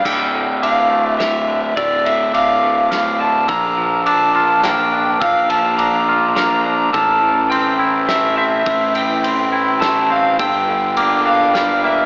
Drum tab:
CC |x-----|------|------|------|
RD |--x-x-|xxx-x-|x-x-x-|xxx-x-|
SD |----o-|----o-|----o-|----o-|
BD |o-----|o-----|o-----|o-----|

CC |------|------|------|
RD |x-x-x-|xxx-x-|x-x-x-|
SD |----o-|----o-|----o-|
BD |o-----|o-----|o-----|